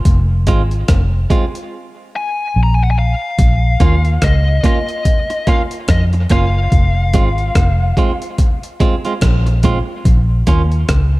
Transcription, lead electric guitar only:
2.16 2.60 G#5 loud
2.63 2.73 A#5 medium
2.74 2.83 G#5 medium
2.84 2.90 F#5 medium
2.91 2.98 G#5 medium
2.99 4.27 F5 medium
4.24 4.65 D#5 medium
4.66 5.49 D#5 medium
5.49 5.60 F5 loud
5.91 6.02 D#5 medium
6.32 7.94 F5 medium

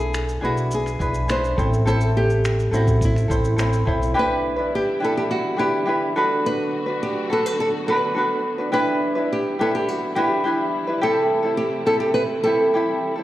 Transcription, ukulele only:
0.00 0.41 D4 medium
0.00 0.42 E4 medium
0.00 0.40 G#4 medium
0.00 0.42 B4 medium
0.41 0.99 D4 medium
0.41 1.01 E4 medium
0.41 0.98 G#4 medium
0.41 1.00 B4 medium
0.99 1.28 D4 medium
0.99 1.29 E4 medium
0.99 1.27 G#4 medium
0.99 1.30 B4 medium
1.28 1.58 D4 medium
1.28 1.58 E4 medium
1.28 1.57 G#4 medium
1.28 1.56 B4 medium
1.57 1.85 C4 medium
1.57 1.86 E4 medium
1.57 1.84 A4 medium
1.57 1.87 C5 medium
1.85 2.71 C4 medium
1.85 2.73 E4 medium
1.85 2.70 A4 medium
1.85 2.73 C5 medium
2.71 3.28 C4 medium
2.71 3.30 E4 medium
2.71 3.27 A4 medium
2.71 3.30 C5 medium
3.28 3.56 C4 medium
3.28 3.57 E4 medium
3.28 3.55 A4 medium
3.28 3.58 C5 medium
3.56 3.85 C4 medium
3.56 3.86 E4 medium
3.56 3.84 A4 medium
3.56 3.87 C5 medium
3.85 4.15 C4 medium
3.85 4.14 E4 medium
3.85 4.15 A4 medium
3.85 4.14 C5 medium
4.14 4.58 D4 medium
4.14 4.57 E4 medium
4.14 4.58 G4 medium
4.14 4.55 B4 medium
4.56 4.99 D4 medium
4.56 5.01 E4 medium
4.56 5.00 B4 medium
5.00 5.58 D4 medium
5.00 5.57 E4 medium
5.00 5.55 G4 medium
5.00 5.59 B4 medium
5.57 5.85 D4 medium
5.57 5.86 E4 medium
5.57 5.84 G4 medium
5.57 5.87 B4 medium
5.86 6.15 D4 medium
5.86 6.16 E4 medium
5.86 6.15 G4 medium
5.86 6.15 B4 medium
6.16 6.89 D4 medium
6.16 6.87 F#4 medium
6.16 6.86 A4 medium
6.16 6.86 B4 medium
6.86 7.30 D4 medium
6.86 7.31 F#4 medium
6.86 7.30 B4 medium
7.30 7.88 D4 medium
7.30 7.88 F#4 medium
7.30 7.85 A4 medium
7.30 7.86 B4 medium
7.87 8.15 D4 medium
7.87 8.15 F#4 medium
7.87 8.13 A4 medium
7.87 8.17 B4 medium
8.15 8.59 D4 medium
8.15 8.58 F#4 medium
8.15 8.58 A4 medium
8.15 8.57 B4 medium
8.58 8.71 D4 soft
8.58 8.72 F#4 medium
8.58 8.72 B4 medium
8.72 9.16 D4 medium
8.72 9.15 E4 medium
8.72 9.15 G4 medium
8.72 9.14 B4 medium
9.15 9.59 D4 soft
9.15 9.59 E4 medium
9.15 9.58 B4 medium
9.59 10.15 D4 medium
9.59 10.17 E4 medium
9.59 10.15 G4 medium
9.59 10.17 B4 medium
10.15 10.44 D4 medium
10.15 10.45 E4 medium
10.15 10.43 G4 medium
10.15 10.46 B4 medium
10.44 10.88 D4 medium
10.44 10.88 E4 medium
10.44 10.87 G4 medium
10.44 10.86 B4 medium
10.87 11.02 D4 soft
10.87 11.02 E4 medium
10.87 11.02 B4 medium
11.01 11.44 C4 medium
11.01 11.43 E4 medium
11.01 11.44 G4 medium
11.01 11.41 A4 medium
11.43 11.86 C4 soft
11.43 11.87 E4 soft
11.43 11.86 A4 medium
11.86 12.44 C4 medium
11.86 12.46 E4 medium
11.86 12.44 G4 medium
11.86 12.45 A4 medium
12.45 12.73 C4 medium
12.45 12.74 E4 medium
12.45 12.73 G4 medium
12.45 12.74 A4 medium
12.74 13.17 C4 medium
12.74 13.16 E4 medium
12.74 13.16 G4 medium
12.74 13.14 A4 medium
13.16 13.23 C4 soft
13.16 13.23 E4 soft
13.16 13.23 A4 medium

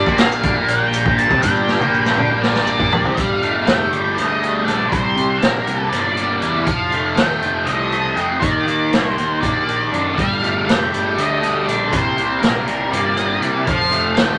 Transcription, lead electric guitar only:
0.00 0.20 D5 medium
0.20 0.70 F5 medium
0.69 1.18 G5 loud
1.18 1.42 A5 loud
1.42 2.87 G5 medium
2.42 3.12 D5 medium
3.14 3.66 F5 medium
3.65 4.17 G5 medium
4.14 4.64 D#5 medium
4.64 4.91 D5 medium
4.89 5.38 C5 medium
5.39 5.78 A#4 medium
5.78 5.92 A4 medium
5.89 6.64 D5 medium
6.64 7.17 F5 medium
7.15 7.67 G5 medium
7.65 8.37 D#5 medium
8.40 9.08 D5 medium
9.08 9.37 C5 medium
9.41 10.15 D5 medium
10.15 10.68 F5 medium
10.65 11.18 G5 medium
11.15 11.66 D#5 medium
11.66 11.92 D5 medium
11.89 12.39 C5 medium
12.40 12.92 A#4 medium
12.92 13.66 D5 medium
13.67 14.18 F5 medium
14.15 14.38 G5 medium

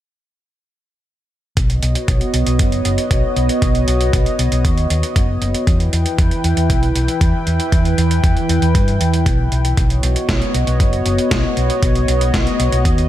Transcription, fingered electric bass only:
1.57 1.79 B1 medium
1.83 1.94 B1 medium
2.08 2.19 B1 medium
2.34 2.45 B1 medium
2.47 2.58 B1 medium
2.85 2.96 F#1 medium
3.11 3.22 B1 medium
3.36 3.48 B1 medium
3.62 3.85 B1 medium
3.88 4.10 B1 medium
4.13 4.25 B1 medium
4.39 4.50 B1 medium
4.52 4.63 B1 medium
4.65 4.87 D#2 medium
4.90 5.01 D#2 medium
5.16 5.38 F#1 medium
5.42 5.53 F#1 medium
5.67 5.90 E2 medium
5.93 6.04 E2 medium
6.19 6.30 E2 loud
6.44 6.55 E2 medium
6.57 6.68 E2 medium
6.70 6.92 B1 loud
6.95 7.07 B1 medium
7.21 7.32 E2 medium
7.47 7.58 E2 medium
7.72 7.95 E2 medium
7.98 8.20 E2 medium
8.24 8.35 E2 loud
8.49 8.60 E2 medium
8.62 8.73 E2 medium
8.75 8.97 G2 medium
9.01 9.23 E2 medium
9.26 9.49 B1 medium
9.52 9.74 B1 medium
9.77 10.00 B1 medium
10.03 10.14 B1 medium
10.29 10.40 B1 medium
10.54 10.66 B1 medium
10.67 10.78 B1 medium
10.80 11.02 F#1 loud
11.06 11.17 F#1 medium
11.31 11.43 B1 medium
11.57 11.68 B1 medium
11.83 12.05 B1 medium
12.08 12.31 B1 medium
12.60 12.71 B1 medium
12.72 12.84 B1 loud
12.85 13.08 D#2 medium

